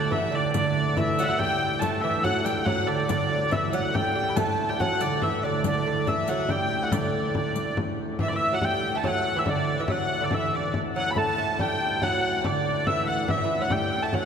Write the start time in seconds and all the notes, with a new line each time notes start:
Already playing: D2 A2 D3 D5
0.11 E3 E5, frame drum
0.32 D3 D5, frame drum
0.53 D3 D5, riq, frame drum
0.76 frame drum
0.89 F#5
0.95 E3 E5, riq, frame drum
1.19 F#3 E5 F#5, riq
1.27 F#3 F#5
1.38 G3 G5, frame drum
1.61 frame drum
1.79 A3 A5, riq, frame drum
2.01 E3 E5
2.22 F#3 F#5, riq, frame drum
2.43 G3 G5, riq
2.64 F#3 F#5, frame drum
2.86 D3 D5, frame drum
3.07 D2 A2 D3 D5, riq, frame drum
3.31 frame drum
3.49 E3 E5, riq, frame drum
3.71 F#3 F#5, riq
3.92 G3 G5, frame drum
4.14 G3 G5, frame drum
4.29 B5
4.36 A3 A5, riq, frame drum
4.59 frame drum
4.68 G3 G5 A5
4.73 G5
4.78 F#3 F#5, riq, frame drum
5.01 D3 D5, riq
5.22 E3 E5, frame drum
5.43 D3 D5, frame drum
5.64 D3 D5, riq, frame drum
5.87 D3 D5, frame drum
6.07 E3 E5, riq, frame drum
6.28 F#3 F#5, riq
6.49 G3 G5, frame drum
6.70 frame drum
6.83 F#5
6.92 D3 D5, riq, frame drum
7.35 frame drum
7.56 riq, frame drum
7.77 frame drum
7.99 frame drum
8.19 D2 A2 E3 E5, frame drum
8.28 D5
8.33 E3 E5
8.53 F#3 F#5
8.61 G3 G5, frame drum
8.83 frame drum
8.95 A3 A5
9.04 F#3 F#5, frame drum
9.36 E3 E5
9.46 D3 D5, frame drum
9.78 E3 E5
9.87 F#3 F#5, frame drum
10.10 frame drum
10.21 D3 D5
10.31 E3 E5, frame drum
10.53 D5
10.74 frame drum
10.95 F#3 F#5
11.11 B5
11.16 A3 A5, frame drum
11.38 A3, frame drum
11.59 G3 G5, frame drum
12.01 F#3 F#5, frame drum
12.43 D3 D5, frame drum
12.66 frame drum
12.86 E3 E5, frame drum
13.07 F#5, frame drum
13.28 D2 A2 E3 E5, frame drum
13.38 E3
13.44 E3
13.59 F#3 F#5
13.70 G3 G5, frame drum
13.91 frame drum
14.02 A3 A5
14.13 F#3 F#5, frame drum